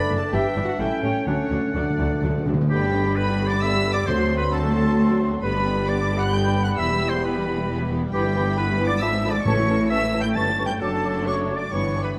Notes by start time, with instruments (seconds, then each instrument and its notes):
Already playing: bassoon A3, clarinet D4, oboe D5, flute section D5, violin section B5
0.09 double bass section F#1, cello section F#2, viola section A3 D4
0.18 french horn section A4, violin section A5
0.32 double bass section G1, cello section G2, viola section E3 D4, bassoon B3, clarinet D4, french horn section G4, flute section E5, oboe E5, violin section G5
0.55 double bass section G1, cello section G2, viola section E3 D4
0.64 french horn section F#4, violin section F#5
0.79 double bass section A1, cello section A2, viola section G3 C#4, bassoon A3, clarinet C#4, french horn section E4, violin section E5, flute section G5, oboe G5
1.02 double bass section A1, cello section A2, viola section G3 C#4, french horn section C#4, violin section C#5
1.26 cello section D2, double bass section D2, timpani D3, viola section F#3 D4, bassoon A3, french horn section C#4, clarinet D4, violin section C#5, flute section F#5, oboe F#5
1.36 timpani D3
1.44 timpani D3
1.50 cello section D2, double bass section D2, timpani D3, viola section F#3 D4
1.60 timpani D3
1.66 timpani D3
1.74 cello section D2, double bass section D2, timpani D3, viola section F#3 D4, bassoon A3, french horn section D4, clarinet D4, violin section D5, flute section F#5
1.83 timpani D3
1.90 timpani D3
1.98 cello section D2, double bass section D2, timpani D3, viola section F#3 D4
2.06 timpani D3
2.14 timpani D3
2.21 double bass section D2, cello section D2, timpani D3, viola section F#3 D4
2.30 timpani D3
2.38 timpani D3
2.46 cello section D2, double bass section D2, timpani D3, viola section F#3 D4
2.54 timpani D3
2.61 timpani D3
2.70 double bass section G1, cello section G2, viola section D3 B3, bassoon G3, french horn section B3 G4, oboe G4, violin section G4 B4 G5, clarinet G4, flute section B5
2.82 viola section G3 D4, violin section D4 D5
2.93 viola section D3 B3, violin section G4 B4
3.04 viola section G3 D4, violin section D4 D5
3.16 viola section D3 B3, violin section G4 B4 B5, oboe B4, clarinet B4
3.28 viola section G3 D4, violin section D4 D5
3.39 viola section D3 B3, violin section G4 B4
3.46 oboe D5, clarinet D5, violin section D6
3.51 viola section G3 D4, violin section D4 D5
3.62 viola section D3 B3, violin section G4 B4 E6, oboe E5, clarinet E5
3.73 viola section G3 D4, violin section D4 D5
3.85 viola section D3 B3, violin section G4 B4
3.93 viola section G3, violin section D4 D5 D6, oboe D5, clarinet D5
3.97 viola section D4
4.06 cello section D2, double bass section D2, timpani D3, bassoon F#3, viola section A3 C4, french horn section C4 F#4, violin section F#4 A4 C6, oboe C5, clarinet C5, flute section C6
4.19 viola section F#3 A3, violin section D4 F#4
4.29 viola section A3 C4, violin section F#4 A4
4.37 oboe B4, clarinet B4, violin section B5
4.41 viola section F#3 A3, violin section D4 F#4
4.52 viola section A3 C4, violin section F#4 A4 A5, oboe A4, clarinet A4
4.62 viola section F#3 A3, violin section D4 F#4
4.74 viola section A3 C4, violin section F#4 A4
4.86 viola section F#3 A3, violin section D4 F#4
4.97 viola section A3 C4, violin section F#4 A4
5.09 viola section F#3 A3, violin section D4 F#4
5.20 viola section A3 C4, violin section F#4 A4
5.31 viola section F#3 A3, violin section D4 F#4
5.43 double bass section G1, cello section G2, viola section D3 B3, bassoon G3, violin section B3 G4 B5, french horn section B3 G4, oboe B4, clarinet B4, flute section B5
5.54 viola section G3 D4, violin section D4 B4
5.66 viola section D3 B3, violin section B3 G4
5.77 viola section G3 D4, violin section D4 B4
5.88 viola section D3 B3, violin section B3 G4 D6, oboe D5, clarinet D5
6.00 viola section G3 D4, violin section D4 B4
6.12 viola section D3 B3, violin section B3 G4
6.18 clarinet F#5, oboe F#5, violin section F#6
6.23 viola section G3 D4, violin section D4 B4
6.34 viola section D3 B3, violin section B3 G4 G6, oboe G5, clarinet G5
6.46 viola section G3 D4, violin section D4 B4
6.57 viola section D3 B3, violin section B3 G4
6.63 clarinet F#5, oboe F#5, violin section F#6
6.68 viola section G3 D4, violin section D4 B4
6.78 double bass section E1, cello section E2, viola section E3 B3, violin section G4 E6, clarinet E5, oboe E5
6.90 viola section G3, violin section E4 B4
7.02 viola section E3 B3, violin section G4
7.09 oboe C5, clarinet C5, violin section C6
7.13 viola section G3, violin section E4 B4
7.23 viola section E3 B3, violin section G4 B5, clarinet B4, oboe B4
7.35 viola section G3, violin section E4 B4
7.47 viola section E3 B3, violin section G4
7.57 viola section G3, violin section E4 B4
7.69 viola section E3 B3, violin section G4
7.80 viola section G3, violin section E4 B4
7.91 viola section E3 B3, violin section G4
8.02 viola section G3, violin section E4 B4
8.13 double bass section G1, cello section G2, bassoon E3, viola section E3 B3, french horn section B3 E4, violin section G4 G5, oboe G4, clarinet G4, flute section B5
8.24 viola section G3, violin section E4 B4
8.35 bassoon E3, viola section E3 B3, violin section G4, flute section B5
8.46 viola section G3, violin section E4 B4
8.57 bassoon E3, viola section E3 B3, violin section G4 B5, oboe B4, clarinet B4, flute section B5
8.68 viola section G3, violin section E4 B4
8.78 bassoon E3, viola section E3 B3, violin section G4, flute section B5
8.86 violin section E4 B4 D6, oboe D5, clarinet D5
8.91 viola section G3
9.01 double bass section G#1, cello section G#2, viola section D3 B3, bassoon F3, violin section F4 B4 E6, french horn section F4, oboe E5, clarinet E5, flute section B5
9.12 viola section F3 G#3, violin section D4 G#4
9.24 viola section D3 B3, bassoon F3, violin section F4 B4, flute section B5
9.30 oboe D5, clarinet D5, violin section D6
9.35 viola section F3 G#3, violin section D4 G#4
9.44 double bass section A1, timpani A2, cello section A2, bassoon E3, french horn section A3 E4, viola section A3 C#4, violin section C#4 A4 C#6, oboe C#5, clarinet C#5, flute section A5
9.58 viola section E3 A3, violin section E4 C#5
9.68 bassoon E3, viola section A3 C#4, violin section C#4 A4, flute section A5
9.80 viola section E3 A3, violin section E4 C#5
9.90 bassoon E3, viola section A3 C#4, violin section C#4 A4 E6, oboe E5, clarinet E5, flute section A5
10.02 viola section E3 A3, violin section E4 C#5
10.13 bassoon E3, viola section A3 C#4, violin section C#4 A4, flute section A5
10.20 oboe G5, clarinet G5, violin section G6
10.25 viola section E3 A3, violin section E4 C#5
10.35 double bass section G1, cello section G2, bassoon E3, viola section G3 C#4, french horn section C#4, violin section G4 A4 A6, oboe A5, clarinet A5, flute section C#6
10.48 viola section E3 A3, violin section E4 G4
10.58 bassoon E3, viola section G3 C#4, violin section G4 A4, flute section C#6
10.65 oboe G5, clarinet G5, violin section G6
10.70 viola section E3 A3, violin section E4 G4
10.80 double bass section F#1, cello section F#2, bassoon F#3, viola section F#3 D4, french horn section A3 D4, violin section D4 A4 A5, oboe A4, clarinet A4, flute section D6
11.04 bassoon F#3, flute section D6
11.25 bassoon F#3, oboe C#5, clarinet C#5, violin section C#6, flute section D6
11.49 bassoon F#3, flute section D6
11.56 clarinet D5, oboe D5, violin section D6
11.71 double bass section G1, cello section G2, french horn section E3 D4, viola section E3 B3, bassoon E3, violin section D4 G4 C#6, clarinet C#5, oboe C#5, flute section D6
11.95 bassoon E3, flute section D6
12.03 clarinet B4, oboe B4, violin section B5